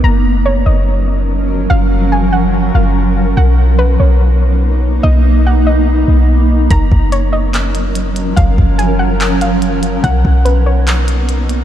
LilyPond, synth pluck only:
\new Staff \with { instrumentName = "Synth pluck" } { \time 4/4 \key fis \major \tempo 4 = 144 ais''4 cis''8 dis''8 r2 | eis''4 gis''8 fis''4 eis''8 r4 | fis''4 b'8 cis''8 r2 | dis''4 fis''8 dis''8 r2 |
ais''4 cis''8 dis''8 r2 | eis''4 gis''8 fis''4 eis''8 r4 | fis''4 b'8 cis''8 r2 | }